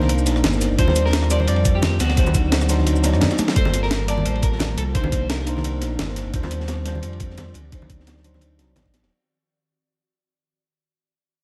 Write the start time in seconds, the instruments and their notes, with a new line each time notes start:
Already playing: sub bass C2, ambient pad D#3 C4 A#4 D5, tine electric piano A#3 D4 D#4 C5, clean electric guitar A#4
0.01 snare, high conga
0.09 closed hi-hat, ride
0.19 shaker
0.26 sub bass A#1, snare, closed hi-hat, ride, shaker
0.36 cross-stick
0.44 sub bass G1, snare, closed hi-hat, ride, high conga
0.53 snare, shaker
0.61 snare, closed hi-hat, ride, shaker
0.71 sub bass G1
0.77 sub bass D#2, ambient pad F3 G4, tine electric piano G3 D4 F4 C5, clean electric guitar C5, kick, closed hi-hat, ride
0.88 snare, high conga
0.96 closed hi-hat, ride, shaker
1.06 clean electric guitar A#4, snare
1.13 snare, closed hi-hat, ride
1.23 cross-stick
1.29 tine electric piano G3 D4 F4 C5, clean electric guitar D5, snare, closed hi-hat, ride, shaker
1.40 clean electric guitar C5, high conga
1.47 sub bass F2, clean electric guitar D5, closed hi-hat, ride
1.56 ride
1.65 kick, closed hi-hat, ride, shaker
1.75 clean electric guitar G4
1.82 snare, closed hi-hat, ride, high conga
2.00 sub bass D2, ambient pad D#3 C4 F#4, clean electric guitar F#4, snare, closed hi-hat, ride, shaker
2.09 snare, ride
2.16 tine electric piano F#3 D4 D#4 C5, kick, snare, closed hi-hat, ride
2.27 high conga, shaker
2.35 kick, closed hi-hat, ride, shaker
2.52 snare, closed hi-hat, ride
2.61 cross-stick, snare, shaker
2.68 tine electric piano F#3 D4 D#4 C5, snare, closed hi-hat, ride, shaker
2.78 snare, high conga
2.86 closed hi-hat, ride
2.96 shaker
3.02 tine electric piano F#3 D4 D#4 D5, snare, closed hi-hat, ride, shaker
3.13 sub bass F#2, cross-stick
3.21 snare, closed hi-hat, ride, high conga
3.31 snare, ride, shaker
3.39 snare, closed hi-hat, high tom, ride, shaker
3.48 snare, ride
3.54 sub bass G1, ambient pad F3 A#3 G4 A5, tine electric piano G3 A#3 F4 A4, clean electric guitar C5, kick, closed hi-hat, ride
3.65 snare, high conga
3.74 closed hi-hat, ride
3.83 clean electric guitar A#4, snare
3.91 snare, closed hi-hat, ride
4.06 tine electric piano G3 A#3 F4 A5, clean electric guitar D5, snare, closed hi-hat, ride
4.17 high conga
4.25 sub bass A1, clean electric guitar C5, closed hi-hat, ride
4.35 ride
4.42 clean electric guitar A#4, kick, closed hi-hat, ride
4.52 snare
4.59 snare, closed hi-hat, ride, high conga
4.78 sub bass C2, clean electric guitar A4, closed hi-hat, ride
4.93 ambient pad D#3 C4 A#4 D5, tine electric piano A#3 D4 D#4 C5, clean electric guitar C5, kick, closed hi-hat, ride
5.04 high conga
5.12 kick, closed hi-hat, ride
5.30 clean electric guitar A#4, snare, closed hi-hat, ride
5.39 snare
5.45 tine electric piano A#3 D4 D#4 C5, closed hi-hat, ride
5.57 snare, high conga
5.64 closed hi-hat, ride
5.81 sub bass A#1, snare, closed hi-hat, ride
5.99 sub bass G1, snare, closed hi-hat, ride, high conga
6.08 snare
6.16 snare, closed hi-hat, ride
6.26 sub bass G1
6.32 sub bass D#2, ambient pad F3 G4 D5, tine electric piano G3 D4 F4 C5, kick, closed hi-hat, ride
6.43 snare, high conga
6.51 closed hi-hat, ride
6.60 snare
6.68 snare, closed hi-hat, ride
6.84 tine electric piano G3 D4 F4 C5, snare, closed hi-hat, ride
6.95 high conga
7.02 sub bass F2, closed hi-hat, ride
7.13 ride
7.20 kick, closed hi-hat, ride
7.30 snare
7.37 snare, closed hi-hat, ride, high conga
7.54 sub bass D2, ambient pad D#3 C4 F#4, closed hi-hat, ride
7.71 tine electric piano F#3 D4 D#4 C5, kick, closed hi-hat, ride
7.82 high conga
7.90 kick, closed hi-hat, ride
8.00 snare
8.07 snare, closed hi-hat, ride
8.17 snare
8.24 tine electric piano F#3 D4 D#4 C5, closed hi-hat, ride
8.34 snare, high conga
8.41 closed hi-hat, ride
8.57 sub bass C2, tine electric piano F#3 D4 D#4 D5, snare, closed hi-hat, ride
8.76 sub bass A1, snare, closed hi-hat, ride, high conga
8.85 kick, snare
8.94 snare, closed hi-hat, ride
9.03 sub bass D1, snare, ride